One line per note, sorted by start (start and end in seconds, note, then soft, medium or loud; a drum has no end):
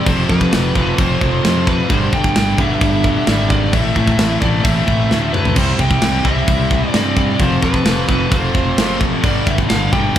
0.06 0.24 F1 medium
0.06 0.28 F2 medium
0.06 0.29 C3 loud
0.06 0.29 F3 loud
0.06 0.29 A3 loud
0.06 0.30 C4 loud
0.06 0.29 C5 medium
0.06 kick loud
0.06 crash medium
0.29 0.51 F2 medium
0.29 0.47 F2 medium
0.29 0.52 C3 medium
0.29 0.52 F3 loud
0.29 0.53 A3 medium
0.29 0.53 C4 loud
0.29 0.77 B4 medium
0.29 kick medium
0.41 kick medium
0.52 0.71 F1 medium
0.52 0.74 F2 medium
0.52 0.75 C3 medium
0.52 0.75 F3 medium
0.52 0.75 A3 loud
0.52 0.76 C4 loud
0.52 snare loud
0.52 crash medium
0.75 0.93 F1 medium
0.75 0.98 F2 medium
0.75 0.98 C3 medium
0.75 0.98 F3 loud
0.75 0.99 A3 loud
0.75 0.99 C4 loud
0.75 0.99 B4 medium
0.75 kick medium
0.98 1.16 F1 medium
0.98 1.20 F2 loud
0.98 1.20 C3 loud
0.98 1.21 F3 loud
0.98 1.21 A3 loud
0.98 1.21 C4 loud
0.98 1.68 C5 loud
0.98 kick loud
0.98 crash medium
1.21 1.39 F1 medium
1.21 1.42 F2 medium
1.21 1.43 C3 medium
1.21 1.44 F3 medium
1.21 1.44 A3 medium
1.21 1.44 C4 loud
1.21 kick medium
1.44 1.65 F2 medium
1.44 1.80 F2 medium
1.44 1.65 C3 medium
1.44 1.66 F3 medium
1.44 1.66 A3 medium
1.44 1.67 C4 medium
1.44 snare loud
1.44 crash medium
1.67 1.88 F2 medium
1.67 1.88 C3 medium
1.67 1.89 F3 loud
1.67 1.89 A3 medium
1.67 1.89 C4 loud
1.67 1.90 B4 medium
1.67 kick medium
1.90 2.08 G1 loud
1.90 2.11 G2 medium
1.90 2.11 D3 loud
1.90 2.12 G3 loud
1.90 2.12 B3 loud
1.90 2.13 D4 loud
1.90 2.14 C5 loud
1.90 kick loud
1.90 crash medium
2.12 2.30 G1 medium
2.12 2.35 G2 medium
2.12 2.35 D3 medium
2.12 2.35 G3 medium
2.12 2.35 B3 medium
2.12 2.36 D4 medium
2.12 2.61 G5 loud
2.12 kick medium
2.24 kick medium
2.36 2.54 G1 medium
2.36 2.57 G2 medium
2.36 2.57 D3 medium
2.36 2.58 G3 medium
2.36 2.58 B3 medium
2.36 2.59 D4 medium
2.36 snare loud
2.36 crash medium
2.58 2.76 G1 medium
2.58 2.80 G2 medium
2.58 2.81 D3 medium
2.58 2.81 G3 medium
2.58 2.81 B3 loud
2.58 2.81 D4 loud
2.58 3.50 E5 loud
2.58 kick medium
2.81 3.16 G1 loud
2.81 3.03 G2 loud
2.81 3.04 D3 loud
2.81 3.04 G3 loud
2.81 3.04 B3 loud
2.81 3.05 D4 loud
2.81 kick loud
2.81 crash medium
3.04 3.26 G2 medium
3.04 3.27 D3 medium
3.04 3.27 G3 medium
3.04 3.27 B3 medium
3.04 3.28 D4 medium
3.04 kick medium
3.27 3.73 G#1 medium
3.27 3.48 G2 medium
3.27 3.49 D3 medium
3.27 3.49 G3 medium
3.27 3.49 B3 medium
3.27 3.49 D4 medium
3.27 snare loud
3.27 crash medium
3.49 3.71 G2 medium
3.49 3.72 D3 medium
3.49 3.72 G3 medium
3.49 3.72 B3 loud
3.49 3.72 D4 loud
3.49 3.74 D5 medium
3.49 kick medium
3.73 3.91 A1 medium
3.73 3.95 A2 medium
3.73 3.96 E3 medium
3.73 3.96 A3 loud
3.73 3.97 C4 loud
3.73 3.98 E4 loud
3.73 3.95 E5 loud
3.73 kick loud
3.73 crash medium
3.96 4.14 A2 medium
3.96 4.17 A2 medium
3.96 4.19 E3 medium
3.96 4.18 A3 medium
3.96 4.19 C4 medium
3.96 4.20 E4 medium
3.96 4.41 E5 loud
3.96 kick medium
4.07 kick medium
4.18 4.36 A1 medium
4.18 4.40 A2 medium
4.18 4.41 E3 medium
4.18 4.41 A3 medium
4.18 4.42 C4 medium
4.18 4.42 E4 medium
4.18 snare loud
4.18 crash medium
4.41 4.60 A1 medium
4.41 4.63 A2 loud
4.41 4.63 E3 medium
4.41 4.64 A3 loud
4.41 4.65 C4 medium
4.41 4.64 E4 loud
4.41 4.63 D5 medium
4.41 kick medium
4.64 4.82 A1 loud
4.64 4.85 A2 loud
4.64 4.86 E3 medium
4.64 4.87 A3 loud
4.64 4.87 C4 loud
4.64 4.87 E4 loud
4.64 5.35 E5 medium
4.64 kick loud
4.64 crash medium
4.87 5.05 A1 medium
4.87 5.08 A2 medium
4.87 5.09 E3 medium
4.87 5.10 A3 medium
4.87 5.11 C4 medium
4.87 5.11 E4 medium
4.87 kick medium
5.10 5.46 D2 medium
5.10 5.32 A2 medium
5.10 5.32 E3 medium
5.10 5.33 A3 medium
5.10 5.34 C4 medium
5.10 5.33 E4 medium
5.10 snare medium
5.33 5.55 A2 medium
5.33 5.55 E3 medium
5.33 5.55 A3 medium
5.33 5.57 C4 medium
5.33 5.56 E4 medium
5.33 5.57 B4 medium
5.33 mid tom medium
5.45 floor tom loud
5.56 5.74 C2 medium
5.56 5.78 C3 medium
5.56 5.78 E3 medium
5.56 5.79 G3 loud
5.56 5.80 C4 loud
5.56 5.79 E4 loud
5.56 5.81 C5 medium
5.56 kick loud
5.56 crash loud
5.56 crash medium
5.79 5.97 C2 medium
5.79 6.00 C3 medium
5.79 6.01 E3 medium
5.79 6.01 G3 medium
5.79 6.02 C4 medium
5.79 6.02 E4 medium
5.79 6.27 G5 loud
5.79 kick medium
5.91 kick medium
6.01 6.20 C2 medium
6.01 6.24 C3 medium
6.01 6.24 E3 medium
6.01 6.24 G3 medium
6.01 6.26 C4 medium
6.01 6.25 E4 medium
6.01 snare loud
6.01 crash medium
6.25 6.43 C2 medium
6.25 6.47 C3 medium
6.25 6.48 E3 loud
6.25 6.48 G3 medium
6.25 6.48 C4 loud
6.25 6.48 E4 medium
6.25 6.88 E5 medium
6.25 kick medium
6.48 6.83 C2 medium
6.48 6.70 C3 medium
6.48 6.71 E3 loud
6.48 6.71 G3 loud
6.48 6.71 C4 loud
6.48 6.71 E4 loud
6.48 kick loud
6.48 crash medium
6.71 6.93 C3 medium
6.71 6.94 E3 medium
6.71 6.94 G3 medium
6.71 6.94 C4 medium
6.71 6.95 E4 medium
6.71 kick medium
6.88 7.13 D5 medium
6.94 7.30 G2 medium
6.94 7.15 C3 medium
6.94 7.16 E3 medium
6.94 7.17 G3 medium
6.94 7.17 C4 medium
6.94 7.17 E4 medium
6.94 snare loud
6.94 crash medium
7.17 7.39 C3 medium
7.17 7.39 E3 loud
7.17 7.39 G3 medium
7.17 7.39 C4 medium
7.17 7.39 E4 medium
7.17 7.41 D5 medium
7.17 kick medium
7.39 7.58 F1 loud
7.39 8.07 F2 loud
7.39 8.08 C3 loud
7.39 7.62 F3 loud
7.39 7.63 A3 medium
7.39 7.63 C4 loud
7.39 7.63 F4 loud
7.39 7.62 C5 medium
7.39 kick loud
7.39 crash medium
7.62 7.81 F2 medium
7.62 7.84 F3 medium
7.62 7.85 A3 medium
7.62 7.86 C4 medium
7.62 7.86 F4 loud
7.62 8.07 B4 medium
7.62 kick medium
7.74 kick medium
7.85 8.04 F1 medium
7.85 8.07 F3 medium
7.85 8.08 A3 medium
7.85 8.08 C4 medium
7.85 8.08 F4 medium
7.85 snare loud
7.85 crash medium
8.08 8.27 F1 medium
8.08 8.76 F2 medium
8.08 8.77 C3 medium
8.08 8.29 F3 medium
8.08 8.30 A3 medium
8.08 8.30 C4 loud
8.08 8.30 F4 loud
8.08 8.32 B4 medium
8.08 kick medium
8.30 8.49 F1 medium
8.30 8.52 F3 loud
8.30 8.53 A3 medium
8.30 8.53 C4 loud
8.30 8.53 F4 loud
8.30 8.97 C5 medium
8.30 kick loud
8.30 crash medium
8.53 8.73 F1 medium
8.53 8.76 F3 medium
8.53 8.77 A3 medium
8.53 8.77 C4 medium
8.53 8.78 F4 medium
8.53 kick medium
8.77 9.13 F#1 medium
8.77 9.22 F2 medium
8.77 9.23 C3 medium
8.77 8.99 F3 medium
8.77 9.00 A3 medium
8.77 9.01 C4 medium
8.77 9.01 F4 medium
8.77 snare loud
8.77 crash medium
9.01 9.23 F3 medium
9.01 9.23 A3 medium
9.01 9.23 C4 medium
9.01 9.23 F4 medium
9.01 kick medium
9.23 9.41 G1 medium
9.23 9.46 G2 medium
9.23 9.46 D3 loud
9.23 9.46 G3 loud
9.23 9.47 B3 loud
9.23 9.47 D4 loud
9.23 9.46 D5 medium
9.23 kick loud
9.23 crash medium
9.47 9.65 G1 medium
9.47 9.69 G2 medium
9.47 9.69 D3 medium
9.47 9.70 G3 medium
9.47 9.70 B3 medium
9.47 9.70 D4 medium
9.47 9.53 E5 medium
9.47 kick medium
9.58 kick medium
9.69 9.88 G1 medium
9.69 9.91 G2 medium
9.69 9.91 D3 medium
9.69 9.92 G3 medium
9.69 9.92 B3 medium
9.69 9.92 D4 medium
9.69 9.94 F5 medium
9.69 snare loud
9.69 crash medium
9.92 10.11 G1 medium
9.92 10.15 G2 medium
9.92 10.15 D3 loud
9.92 10.15 G3 medium
9.92 10.16 B3 loud
9.92 10.16 D4 loud
9.92 10.19 G5 loud
9.92 kick medium